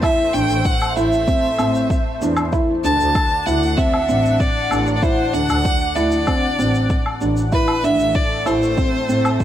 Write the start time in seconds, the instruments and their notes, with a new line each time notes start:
Already playing: analog synth pad A3 C5
0.02 felt piano E4, violin E5, kick, low woodblock, shaker
0.34 double bass section A1, felt piano D4, violin G5, shaker
0.50 double bass section A1, shaker
0.65 violin F#5, kick, shaker
0.82 low woodblock
0.89 violin F#5
0.96 double bass section A1, felt piano E4, violin E5, shaker
1.12 shaker
1.28 felt piano C4, kick, shaker
1.58 double bass section A2, felt piano C4, low woodblock, shaker
1.75 shaker
1.90 kick, shaker
2.22 double bass section E2, felt piano D4, shaker
2.37 low woodblock, shaker
2.53 analog synth pad D4, felt piano E4, kick, shaker
2.84 double bass section D2, felt piano D4, analog synth pad F#5, violin A5, shaker
3.00 double bass section D2, shaker
3.15 kick, low woodblock, shaker
3.46 double bass section D2, felt piano E4, violin F#5, shaker
3.63 shaker
3.76 felt piano C4, violin E5, kick, shaker
3.94 low woodblock
4.09 double bass section A1, felt piano C4, shaker
4.25 shaker
4.40 violin D5, kick, shaker
4.71 double bass section A1, felt piano D4, low woodblock, shaker
4.87 shaker
4.96 violin D5
5.02 felt piano E4, violin C5, kick, shaker
5.33 double bass section D2, felt piano D4, violin F#5, shaker
5.49 double bass section D2, low woodblock, shaker
5.65 kick, shaker
5.96 double bass section D2, felt piano E4, violin D5, shaker
6.12 shaker
6.27 felt piano C4, kick, low woodblock, shaker
6.59 double bass section A1, felt piano C4, shaker
6.75 shaker
6.90 kick, shaker
7.06 low woodblock
7.21 double bass section A1, felt piano D4, shaker
7.37 shaker
7.52 analog synth pad A3, felt piano E4, violin B4, kick, shaker
7.59 analog synth pad A4
7.68 low woodblock
7.84 double bass section A1, felt piano D4, violin E5, shaker
7.99 double bass section A1, shaker
8.14 violin D5, kick, shaker
8.28 analog synth pad C4
8.46 double bass section A1, felt piano E4, violin C5, low woodblock, shaker
8.63 shaker
8.77 felt piano C4, kick, shaker
9.09 double bass section A2, felt piano C4, shaker
9.25 low woodblock, shaker
9.40 kick, shaker